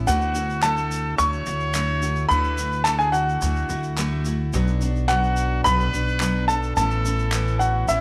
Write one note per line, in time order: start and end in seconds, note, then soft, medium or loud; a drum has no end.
0.07 1.15 D2 loud
0.07 0.35 D3 medium
0.07 0.36 A3 loud
0.07 0.35 E4 loud
0.07 0.34 F#4 loud
0.07 0.60 F#4 medium
0.07 0.65 F#5 medium
0.07 shaker loud
0.21 shaker soft
0.35 0.62 A3 soft
0.35 0.63 E4 medium
0.35 0.63 F#4 medium
0.35 shaker medium
0.50 shaker soft
0.63 1.19 D3 medium
0.63 1.18 A3 medium
0.63 1.19 E4 medium
0.63 1.21 F#4 medium
0.63 1.15 A4 medium
0.63 1.21 A5 loud
0.63 clap medium
0.63 shaker loud
0.77 shaker soft
0.91 shaker medium
1.18 1.45 D2 loud
1.18 1.47 D3 medium
1.18 1.47 A3 medium
1.18 1.48 E4 medium
1.18 1.47 F#4 medium
1.18 2.26 C#5 loud
1.18 2.34 C#6 loud
1.18 shaker loud
1.33 shaker soft
1.46 2.26 D2 loud
1.46 1.74 A3 soft
1.46 1.74 E4 medium
1.46 1.74 F#4 medium
1.46 shaker medium
1.60 shaker soft
1.74 2.02 D3 medium
1.74 2.03 A3 medium
1.74 2.02 E4 medium
1.74 2.01 F#4 medium
1.74 clap medium
1.74 shaker loud
2.02 2.30 A3 medium
2.02 2.30 E4 medium
2.02 2.31 F#4 medium
2.02 shaker medium
2.16 shaker soft
2.29 3.38 D2 loud
2.29 2.59 D3 medium
2.29 2.59 A3 medium
2.29 2.58 E4 medium
2.29 2.57 F#4 loud
2.29 2.81 B4 medium
2.29 2.87 B5 loud
2.29 shaker medium
2.44 shaker soft
2.58 2.86 A3 soft
2.58 2.87 E4 medium
2.58 2.87 F#4 medium
2.58 shaker medium
2.72 shaker soft
2.84 3.41 D3 medium
2.84 3.42 A3 medium
2.84 2.97 A4 medium
2.84 3.00 A5 loud
2.84 clap medium
2.84 shaker medium
2.88 3.43 E4 medium
2.88 3.44 F#4 medium
2.98 3.11 G#4 medium
2.98 3.12 G#5 medium
2.98 shaker soft
3.12 4.21 F#4 medium
3.12 4.21 F#5 medium
3.12 shaker medium
3.29 shaker soft
3.42 3.68 D2 loud
3.42 3.70 D3 medium
3.42 3.71 A3 medium
3.42 3.70 E4 medium
3.42 3.69 F#4 medium
3.42 shaker medium
3.56 shaker soft
3.69 4.49 D2 loud
3.69 3.97 A3 soft
3.69 3.98 E4 medium
3.69 3.98 F#4 medium
3.69 shaker medium
3.83 shaker soft
3.97 4.26 D3 medium
3.97 4.26 A3 loud
3.97 4.25 E4 loud
3.97 4.25 F#4 loud
3.97 clap medium
3.97 shaker loud
4.25 4.54 A3 medium
4.25 4.54 E4 medium
4.25 4.54 F#4 medium
4.25 shaker medium
4.53 5.61 B1 loud
4.53 4.82 B2 medium
4.53 4.82 F#3 loud
4.53 4.82 B3 loud
4.53 4.82 D4 loud
4.53 4.81 F#4 loud
4.53 shaker medium
4.67 shaker soft
4.81 5.09 B3 medium
4.81 5.09 D4 medium
4.81 5.10 F#4 medium
4.81 shaker medium
4.96 shaker soft
5.08 5.65 B2 medium
5.08 5.65 F#3 medium
5.08 5.66 B3 medium
5.08 5.66 D4 medium
5.08 5.61 F#4 medium
5.08 5.66 F#4 medium
5.08 5.66 F#5 loud
5.08 clap medium
5.08 shaker medium
5.24 shaker soft
5.37 shaker medium
5.64 5.92 B1 loud
5.64 5.93 F#3 medium
5.64 5.94 B3 medium
5.64 5.93 D4 medium
5.64 5.92 F#4 medium
5.64 6.44 B4 loud
5.64 6.44 B5 loud
5.64 shaker loud
5.80 shaker soft
5.93 6.73 B1 medium
5.93 6.20 B3 soft
5.93 6.20 D4 medium
5.93 6.21 F#4 medium
5.93 shaker medium
6.08 shaker soft
6.20 6.49 B2 medium
6.20 6.49 F#3 medium
6.20 6.49 B3 medium
6.20 6.49 D4 loud
6.20 6.48 F#4 medium
6.20 clap loud
6.20 shaker loud
6.47 6.77 B3 medium
6.47 6.77 D4 medium
6.47 6.77 F#4 medium
6.47 6.74 A4 medium
6.47 6.74 A5 medium
6.47 shaker medium
6.63 shaker soft
6.76 7.84 A1 loud
6.76 7.05 A2 medium
6.76 7.05 E3 medium
6.76 7.05 B3 medium
6.76 7.06 C#4 loud
6.76 7.04 E4 loud
6.76 7.56 A4 loud
6.76 7.56 A5 medium
6.76 shaker medium
6.91 shaker soft
7.05 7.33 B3 soft
7.05 7.33 C#4 medium
7.05 7.33 E4 medium
7.05 shaker medium
7.19 shaker soft
7.32 7.89 A2 medium
7.32 7.87 E3 medium
7.32 7.88 B3 medium
7.32 7.89 C#4 medium
7.32 7.90 E4 loud
7.32 clap loud
7.32 shaker loud
7.48 shaker soft
7.59 7.86 F#4 medium
7.59 7.89 F#5 medium
7.59 shaker medium
7.88 8.01 A1 loud
7.88 8.01 E3 medium
7.88 8.01 B3 medium
7.88 8.01 C#4 medium
7.88 8.01 E4 medium
7.88 8.01 E5 medium
7.88 shaker loud